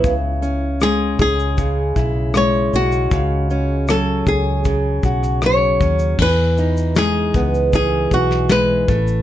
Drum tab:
CC |----------------|----------------|x---------------|
SH |x-x-x-xxx-x-x-xx|x-x-x-x-x-xxx-xx|--xxx-xxx-x-x-xx|
SD |----r-------r---|----r------rr---|----o------oo---|
BD |o-----o-o-o-----|o-----o-o-o---o-|o-----o-o-o---o-|